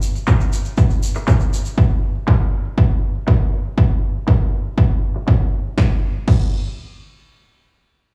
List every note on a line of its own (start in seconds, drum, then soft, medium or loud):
0.02 open hi-hat medium
0.02 shaker medium
0.15 closed hi-hat medium
0.15 shaker soft
0.27 kick loud
0.27 clap loud
0.27 shaker soft
0.40 shaker soft
0.53 open hi-hat medium
0.53 shaker medium
0.65 closed hi-hat medium
0.65 shaker soft
0.77 kick loud
0.77 shaker soft
0.90 closed hi-hat soft
0.90 shaker soft
1.03 open hi-hat loud
1.03 shaker medium
1.15 clap soft
1.15 closed hi-hat medium
1.15 shaker soft
1.27 kick loud
1.27 clap loud
1.27 shaker soft
1.40 closed hi-hat soft
1.40 shaker soft
1.53 open hi-hat loud
1.53 shaker medium
1.65 closed hi-hat medium
1.65 shaker soft
1.78 kick loud
1.90 closed hi-hat medium
2.03 open hi-hat medium
2.15 closed hi-hat medium
2.27 kick medium
2.27 clap loud
2.53 open hi-hat medium
2.65 closed hi-hat medium
2.78 kick loud
2.90 closed hi-hat soft
3.03 open hi-hat medium
3.15 closed hi-hat medium
3.27 kick medium
3.27 clap loud
3.40 closed hi-hat medium
3.53 open hi-hat medium
3.65 closed hi-hat medium
3.78 kick loud
3.90 closed hi-hat medium
4.03 open hi-hat medium
4.15 open hi-hat medium
4.27 kick loud
4.27 clap loud
4.53 open hi-hat medium
4.65 closed hi-hat medium
4.78 kick loud
5.03 open hi-hat medium
5.15 clap soft
5.15 closed hi-hat medium
5.27 kick medium
5.27 clap loud
5.53 open hi-hat medium
5.65 closed hi-hat medium
5.78 kick loud
5.78 snare medium
6.28 kick loud
6.28 crash medium